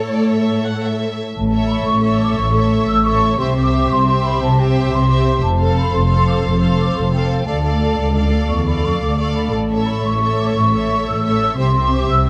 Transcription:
Already playing: cello section A2, french horn section A3, viola section A4, violin section C#5
0.13 violin section D5
0.31 violin section E5
0.66 violin section F#5
0.83 violin section E5
1.35 double bass section A1, cello section A2, flute section A5
1.52 viola section A4, violin section C#5 E5
1.69 flute section B5
1.86 double bass section A1, cello section A2, flute section C#6
2.02 viola section A4, violin section C#5 E5
2.20 flute section D6
2.36 double bass section A1, cello section A2, flute section C#6
2.53 viola section A4, violin section C#5 E5
2.87 double bass section A1, cello section A2, flute section E6
3.04 viola section A4, violin section C#5 E5, flute section C#6
3.39 double bass section C2, cello section C3, viola section G4, violin section C5 E5, flute section C6
3.56 viola section G4, violin section C5 E5, flute section D6
3.90 double bass section C2, cello section C3, flute section C6
4.08 viola section G4, violin section C5 E5
4.24 flute section B5
4.41 double bass section C2, cello section C3, flute section A5
4.58 viola section G4, violin section C5 E5, flute section G5
4.92 double bass section C2, cello section C3, flute section C6
5.09 viola section G4, violin section C5 E5
5.43 double bass section F1, cello section F2, flute section A5
5.60 viola section A4, violin section C5 F5
5.78 flute section B5
5.94 double bass section F1, cello section F2, flute section C6
6.10 viola section A4, violin section C5 F5
6.27 flute section D6
6.45 double bass section F1, cello section F2, flute section C6
6.61 viola section A4, violin section C5 F5
6.79 flute section D6
6.95 double bass section F1, cello section F2, flute section C6
7.12 viola section A4, violin section C5 F5, flute section G5
7.46 double bass section D2, cello section D2, viola section A4, violin section D5 F5, flute section A5
7.63 viola section A4, violin section D5 F5
7.99 cello section C#2, double bass section D2
8.16 viola section A4, violin section D5 F5
8.34 cello section D2
8.48 double bass section D2, cello section E2, flute section C#6
8.66 viola section A4, violin section D5 F5, flute section B5
8.85 cello section F2, flute section C#6
9.02 double bass section D2, cello section D2, flute section D6
9.19 viola section A4, violin section D5 F5, flute section C#6
9.36 flute section B5
9.53 double bass section A1, cello section A2, flute section A5
9.71 viola section A4, violin section C#5 E5
9.86 flute section B5
10.05 double bass section A1, cello section A2, flute section C#6
10.21 viola section A4, violin section C#5 E5
10.39 flute section D6
10.56 double bass section A1, cello section A2, flute section C#6
10.73 viola section A4, violin section C#5 E5
11.06 double bass section A1, cello section A2, flute section E6
11.24 viola section A4, violin section C#5 E5
11.57 double bass section C2, cello section C3, viola section G4, violin section C5 E5, flute section C6
11.75 viola section G4, violin section C5 E5
11.93 flute section D6
12.09 double bass section C2, cello section C3, flute section E6

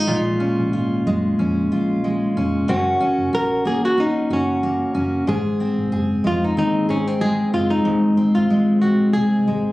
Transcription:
Already playing: steel-string acoustic guitar G#3 D#4
0.07 fingered electric bass A#1, steel-string acoustic guitar A#2 F4
0.40 steel-string acoustic guitar C#4
0.60 fingered electric bass A#1
0.73 fingered electric bass G#1, steel-string acoustic guitar F4
1.06 fingered electric bass F#2, steel-string acoustic guitar G#3
1.39 fingered electric bass F2, steel-string acoustic guitar C#4
1.72 fingered electric bass A#1, steel-string acoustic guitar F4
2.04 steel-string acoustic guitar G#3
2.36 fingered electric bass F1, steel-string acoustic guitar C#4
2.68 fingered electric bass F#1, steel-string acoustic guitar F#2 F#4, nylon-string guitar C#4
3.00 steel-string acoustic guitar C#4
3.18 fingered electric bass F#1
3.33 fingered electric bass A#1, steel-string acoustic guitar F#4, nylon-string guitar A#4
3.65 fingered electric bass G#1, steel-string acoustic guitar A#3, nylon-string guitar G#4
3.85 nylon-string guitar F#4
3.97 steel-string acoustic guitar C#4, nylon-string guitar D#4
4.30 fingered electric bass F#1, nylon-string guitar C#4, steel-string acoustic guitar F#4
4.63 steel-string acoustic guitar A#3
4.95 fingered electric bass F#1, steel-string acoustic guitar C#4
5.27 fingered electric bass G#1, steel-string acoustic guitar G#2 G#4
5.60 steel-string acoustic guitar C4
5.78 fingered electric bass G#1
5.92 fingered electric bass F#1, steel-string acoustic guitar G#4
6.24 fingered electric bass F2, steel-string acoustic guitar G#3, nylon-string guitar F4
6.44 nylon-string guitar D#4
6.57 fingered electric bass D#2, steel-string acoustic guitar C4, nylon-string guitar D#4
6.89 fingered electric bass G#1, nylon-string guitar C#4, steel-string acoustic guitar G#4
7.07 nylon-string guitar C4
7.21 steel-string acoustic guitar G#3, nylon-string guitar G#4
7.53 fingered electric bass F#1, steel-string acoustic guitar C4, nylon-string guitar F4
7.70 nylon-string guitar D#4
7.85 fingered electric bass G#1, steel-string acoustic guitar G#2
8.17 steel-string acoustic guitar C4
8.35 fingered electric bass G#1, nylon-string guitar F4
8.50 steel-string acoustic guitar G#3
8.82 fingered electric bass A#1, steel-string acoustic guitar C4, nylon-string guitar F#4
9.13 fingered electric bass C2, nylon-string guitar G#4, steel-string acoustic guitar G#4
9.48 fingered electric bass G#1, steel-string acoustic guitar G#3

